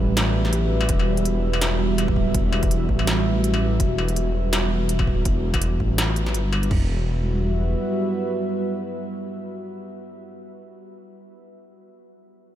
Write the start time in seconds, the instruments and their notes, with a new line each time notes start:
Already playing: analog synth pad G3 F#4 B4 E5
0.00 detuned saw bass A1
0.17 snare, closed hi-hat, struck metal
0.45 snare
0.53 detuned saw bass A1, closed hi-hat
0.81 struck metal
0.89 detuned saw bass E1, kick, closed hi-hat
0.99 struck metal
1.17 closed hi-hat
1.25 closed hi-hat
1.53 struck metal
1.61 snare, closed hi-hat
1.98 closed hi-hat, struck metal
2.08 kick
2.16 detuned saw bass D1, kick
2.35 detuned saw bass E1, kick, closed hi-hat
2.53 struck metal
2.63 detuned saw bass E1, kick, closed hi-hat
2.71 closed hi-hat
2.89 detuned saw bass A1, kick
2.99 struck metal
3.07 snare, closed hi-hat
3.44 closed hi-hat
3.54 struck metal
3.80 detuned saw bass E1, kick, closed hi-hat
3.98 struck metal
4.08 closed hi-hat
4.16 closed hi-hat
4.53 snare, closed hi-hat, struck metal
4.89 closed hi-hat
4.99 kick, struck metal
5.07 detuned saw bass D1, kick
5.25 detuned saw bass E1, kick, closed hi-hat
5.54 detuned saw bass E1, kick, closed hi-hat, struck metal
5.62 closed hi-hat
5.80 detuned saw bass A1, kick
5.98 snare, closed hi-hat, struck metal
6.16 closed hi-hat
6.26 snare
6.34 detuned saw bass G1, closed hi-hat
6.53 struck metal
6.63 closed hi-hat
6.71 detuned saw bass E1, analog synth pad G3, kick, floor tom, crash
6.77 analog synth pad F#4
6.83 analog synth pad B4
6.88 analog synth pad E5